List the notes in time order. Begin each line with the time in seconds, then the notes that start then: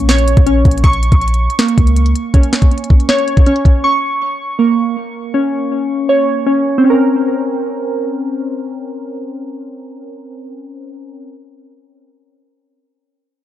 Already playing: A#1 A#3 C#4
0.09 C#5, snare, closed hi-hat
0.18 closed hi-hat
0.28 closed hi-hat
0.37 A#1, kick, closed hi-hat
0.46 C#4, closed hi-hat
0.65 A#1, kick, closed hi-hat
0.71 closed hi-hat
0.78 closed hi-hat
0.84 A#1 C#6, kick, closed hi-hat
0.93 closed hi-hat
1.03 closed hi-hat
1.12 A#1, kick, closed hi-hat
1.21 closed hi-hat
1.28 closed hi-hat
1.34 closed hi-hat
1.50 closed hi-hat
1.59 A#3, snare, closed hi-hat
1.68 closed hi-hat
1.78 C#2, kick, closed hi-hat
1.87 closed hi-hat
1.96 closed hi-hat
2.06 closed hi-hat
2.15 closed hi-hat
2.34 C#4, kick, closed hi-hat
2.43 closed hi-hat
2.53 snare, closed hi-hat
2.62 kick, closed hi-hat
2.71 closed hi-hat
2.78 closed hi-hat
2.84 closed hi-hat
2.90 kick
3.00 closed hi-hat
3.09 C#5, snare, closed hi-hat
3.18 closed hi-hat
3.28 closed hi-hat
3.37 kick, closed hi-hat
3.46 C#4, closed hi-hat
3.56 closed hi-hat
3.65 kick, closed hi-hat
3.84 C#6
4.59 A#3
5.34 C#4
6.09 C#5
6.46 C#4
6.78 C4
6.84 C#4
6.90 A#4